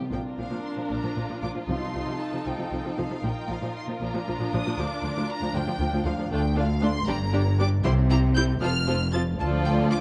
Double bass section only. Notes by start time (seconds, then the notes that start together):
0.12 A#1
0.38 A#1
0.90 A#1
1.16 A#1
1.42 A#1
1.68 C2
1.95 C2
2.46 C2
2.72 C2
2.98 C2
3.25 A#1
3.50 A#1
4.01 A#1
4.28 A#1
4.53 A#1
4.78 D2
5.04 D2
5.54 D2
5.80 D2
6.06 D2
6.30 D2
7.07 G1
7.84 C2
8.61 F1
9.39 D2